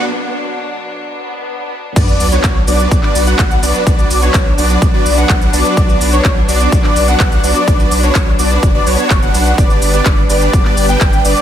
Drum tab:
CC |----------------|x---------------|----------------|----------------|
HH |----------------|x-oxx-oxx-oxxxox|x-oxx-oxx-oxxxox|x-oxx-oxx-oxxxox|
SH |----------------|xxxxx-xxx-xxxxxx|xxxxx-xxx-xxxxxx|xxxxx-xxx-xxxxxx|
CP |----------------|----x----x--x---|----x-------x---|----x----x--x---|
BD |----------------|o---o---o---o---|o---o---o---o---|o---o---o---o---|

CC |----------------|----------------|
HH |x-oxx-oxx-oxxxox|x-oxx-oxx-oxxxox|
SH |xxxxx-xxx-xxxxxx|xxxxx-xxx-xxxxxx|
CP |----x-------x---|----x----x--x---|
BD |o---o---o---o---|o---o---o---o---|